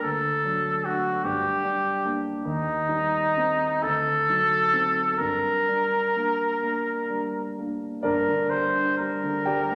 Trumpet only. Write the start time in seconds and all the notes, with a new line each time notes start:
0.03 A4
0.85 F#4
1.24 G4
2.45 D#4
3.83 A4
5.18 A#4
8.03 A#4
8.50 C5
8.98 A#4